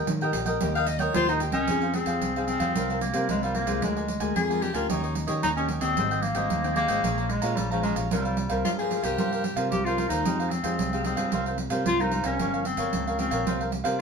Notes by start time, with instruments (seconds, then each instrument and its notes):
0.07 nylon-string guitar A#2, fingered electric bass D#3, muted cavaquinho stroke, pandeiro
0.21 nylon-string guitar A#3 D#4 G4, cavaquinho A#4 D#5 G5, pandeiro
0.33 fingered electric bass A#1, nylon-string guitar A#3 D#4 G4, pandeiro
0.46 cavaquinho A#4 D#5 G5, pandeiro
0.61 fingered electric bass D#2, nylon-string guitar D#3 A#3 D#4 G4, cavaquinho G4 A#4 D#5 G5, pandeiro
0.75 cavaquinho A#4 D#5 G5, soprano saxophone F5, pandeiro
0.87 soprano saxophone D#5, muted cavaquinho stroke, pandeiro
0.99 cavaquinho A#4 D#5 G5, soprano saxophone C#5, pandeiro
1.14 fingered electric bass D#2, nylon-string guitar A#2 A#3 D#4 G4, clarinet F4, soprano saxophone C5, pandeiro
1.29 clarinet D#4, cavaquinho A#4 D#5 G5, pandeiro
1.40 nylon-string guitar A#3 D#4 G4, cavaquinho G4 A#4 D#5 G5, pandeiro
1.52 fingered electric bass C2, clarinet C#4, cavaquinho A#4 D#5 G5, pandeiro
1.68 fingered electric bass F2, nylon-string guitar F3 C4 D#4 G#4, cavaquinho D#4 G#4 C5 F5, pandeiro
1.82 cavaquinho G#4 C5 F5, pandeiro
1.94 nylon-string guitar C4 D#4 G#4, clarinet C4, muted cavaquinho stroke, pandeiro
2.06 fingered electric bass F2, cavaquinho G#4 C5 F5, pandeiro
2.21 fingered electric bass C2, nylon-string guitar C3, pandeiro
2.36 nylon-string guitar C4 D#4 G#4, cavaquinho G#4 C5 F5, pandeiro
2.47 clarinet C4, cavaquinho D#4 G#4 C5 F5, pandeiro
2.60 fingered electric bass F2, nylon-string guitar G3 A#3 F4, cavaquinho G#4 C5 F5, pandeiro
2.75 fingered electric bass C2, nylon-string guitar C3, cavaquinho F4 A#4 C5 F5, pandeiro
2.90 cavaquinho A#4 C5 F5, pandeiro
3.01 clarinet A#3, muted cavaquinho stroke, pandeiro
3.14 fingered electric bass C3, nylon-string guitar G3 A#3 F4, cavaquinho A#4 C5 F5, pandeiro
3.29 fingered electric bass C2, nylon-string guitar G2, clarinet G#3, pandeiro
3.43 nylon-string guitar G3 A#3 F4, clarinet G3, cavaquinho A#4 C5 F5, pandeiro
3.55 clarinet A#3, cavaquinho F4 A#4 C5 F5, pandeiro
3.66 fingered electric bass C2, nylon-string guitar G#3 A#3 F4, cavaquinho A#4 C5 F5, pandeiro
3.82 fingered electric bass D2, nylon-string guitar D3, clarinet G#3, cavaquinho D4 A#4 D5 G#5, pandeiro
3.96 cavaquinho A#4 D5 G#5, pandeiro
4.08 muted cavaquinho stroke, pandeiro
4.20 fingered electric bass D2, nylon-string guitar G#3 A#3 F4, cavaquinho A#4 D5 G#5, pandeiro
4.35 fingered electric bass F2, nylon-string guitar D3, soprano saxophone G#4, pandeiro
4.49 nylon-string guitar G#3 A#3 F4, cavaquinho A#4 D5 G#5, pandeiro
4.62 cavaquinho D4 A#4 D5 G#5, soprano saxophone G4, pandeiro
4.73 fingered electric bass D2, nylon-string guitar A#3 C#4 G4, soprano saxophone F4, cavaquinho A#4 D5 G#5, pandeiro
4.90 fingered electric bass D#2, nylon-string guitar D#3, cavaquinho D#4 G4 C#5 D#5, soprano saxophone D#4, pandeiro
5.03 cavaquinho G4 C#5 D#5, pandeiro
5.15 muted cavaquinho stroke, pandeiro
5.27 fingered electric bass D#3, nylon-string guitar A#3 C#4 G4, cavaquinho G4 C#5 D#5, pandeiro
5.43 fingered electric bass D#2, nylon-string guitar A#2, clarinet D#4, pandeiro
5.56 nylon-string guitar A#3 C#4 G4, clarinet C#4, cavaquinho G4 C#5 D#5, pandeiro
5.69 cavaquinho D#4 G4 C#5 D#5, pandeiro
5.81 fingered electric bass D#2, clarinet C4, cavaquinho G4 C#5 D#5, pandeiro
5.96 fingered electric bass G#1, nylon-string guitar G#2 G3 C4 D#4, cavaquinho G#4 C5 D#5 G5, pandeiro
6.11 cavaquinho C5 D#5 G5, pandeiro
6.22 clarinet A#3, muted cavaquinho stroke, pandeiro
6.34 fingered electric bass G#1, nylon-string guitar G3 C4 D#4, cavaquinho C5 D#5 G5, pandeiro
6.50 fingered electric bass D#2, nylon-string guitar D#3, pandeiro
6.64 nylon-string guitar G3 C4 D#4, cavaquinho C5 D#5 G5, pandeiro
6.76 clarinet A#3, cavaquinho G#4 C5 D#5 G5, pandeiro
6.87 fingered electric bass G#1, nylon-string guitar F3 G#3 C#4, cavaquinho C5 D#5 G5, pandeiro
7.03 fingered electric bass A#1, nylon-string guitar A#2, cavaquinho G#4 C#5 F5 A#5, pandeiro
7.18 cavaquinho C#5 F5 A#5, pandeiro
7.29 clarinet G#3, muted cavaquinho stroke, pandeiro
7.42 fingered electric bass A#2, nylon-string guitar F3 G#3 C#4, cavaquinho C#5 F5 A#5, pandeiro
7.57 fingered electric bass A#1, nylon-string guitar F2, clarinet G3, pandeiro
7.71 clarinet F3, nylon-string guitar F3 G#3 C#4, cavaquinho C#5 F5 A#5, pandeiro
7.83 clarinet G#3, cavaquinho G#4 C#5 F5 A#5, pandeiro
7.96 fingered electric bass A#1, cavaquinho C#5 F5 A#5, pandeiro
8.11 fingered electric bass C2, nylon-string guitar C3 G3 A#3 F4, clarinet G3, cavaquinho F4 A#4 C5 F5, pandeiro
8.25 cavaquinho A#4 C5 F5, pandeiro
8.37 muted cavaquinho stroke, pandeiro
8.49 fingered electric bass C2, nylon-string guitar G3 A#3 F4, cavaquinho A#4 C5 F5, pandeiro
8.65 fingered electric bass G2, nylon-string guitar G2, soprano saxophone F4, pandeiro
8.79 nylon-string guitar G3 A#3 F4, soprano saxophone G#4, cavaquinho A#4 C5 F5, pandeiro
8.90 cavaquinho F4 A#4 C5 F5, pandeiro
9.03 fingered electric bass C2, nylon-string guitar G3 A#3 F4, soprano saxophone G4, cavaquinho A#4 C5 F5, pandeiro
9.18 fingered electric bass G2, nylon-string guitar C3 G3 A#3 F4, cavaquinho F4 A#4 C5 F5, pandeiro
9.32 cavaquinho A#4 C5 F5, pandeiro
9.44 muted cavaquinho stroke, pandeiro
9.56 fingered electric bass C3, nylon-string guitar G3 A#3 F4, cavaquinho A#4 C5 F5, pandeiro
9.71 fingered electric bass C2, nylon-string guitar G2, clarinet G4, pandeiro
9.85 nylon-string guitar G3 A#3 F4, clarinet F4, cavaquinho A#4 C5 F5, pandeiro
9.97 cavaquinho F4 A#4 C5 F5, pandeiro
10.09 fingered electric bass D#2, clarinet D#4, cavaquinho A#4 C5 F5, pandeiro
10.25 fingered electric bass F2, nylon-string guitar F3 G#3 D#4 G4, cavaquinho D#4 G#4 C5 F5, pandeiro
10.39 cavaquinho G#4 C5 F5, pandeiro
10.50 clarinet C4, muted cavaquinho stroke, pandeiro
10.63 fingered electric bass F2, nylon-string guitar G#3 D#4 G4, cavaquinho G#4 C5 F5, pandeiro
10.79 fingered electric bass C2, nylon-string guitar C3, pandeiro
10.93 nylon-string guitar G#3 D#4 G4, cavaquinho G#4 C5 F5, pandeiro
11.04 clarinet C4, cavaquinho D#4 G#4 C5 F5, pandeiro
11.16 fingered electric bass G2, nylon-string guitar G3 A#3 F4, cavaquinho G#4 C5 F5, pandeiro
11.32 fingered electric bass C2, nylon-string guitar C3, cavaquinho F4 A#4 C5 F5, pandeiro
11.46 cavaquinho A#4 C5 F5, pandeiro
11.58 muted cavaquinho stroke, pandeiro
11.70 fingered electric bass C3, nylon-string guitar G3 A#3 F4, cavaquinho A#4 C5 F5, pandeiro
11.86 fingered electric bass C2, nylon-string guitar G2, clarinet F4, pandeiro
11.99 nylon-string guitar G3 A#3 F4, clarinet D#4, cavaquinho A#4 C5 F5, pandeiro
12.11 cavaquinho F4 A#4 C5 F5, pandeiro
12.24 fingered electric bass C2, clarinet C#4, cavaquinho A#4 C5 F5, pandeiro
12.39 fingered electric bass G1, nylon-string guitar G2 F3 A#3 C#4, cavaquinho G4 A#4 C#5 F5, pandeiro
12.53 cavaquinho A#4 C#5 F5, pandeiro
12.65 clarinet C4, muted cavaquinho stroke, pandeiro
12.77 fingered electric bass G1, nylon-string guitar F3 A#3, cavaquinho A#4 C#5 F5, pandeiro
12.93 fingered electric bass C#2, nylon-string guitar G2, pandeiro
13.07 cavaquinho A#4 C#5 F5, pandeiro
13.19 nylon-string guitar F3 A#3 C#4, clarinet C4, cavaquinho G4 A#4 C#5 F5, pandeiro
13.31 fingered electric bass A#1, cavaquinho A#4 C#5 F5, pandeiro
13.46 fingered electric bass C2, nylon-string guitar C3 G3 A#3 F4, cavaquinho F4 A#4 C5 F5, pandeiro
13.60 cavaquinho A#4 C5 F5, pandeiro
13.72 muted cavaquinho stroke, pandeiro
13.84 fingered electric bass C3, nylon-string guitar G3 A#3 F4, cavaquinho A#4 C5 F5, pandeiro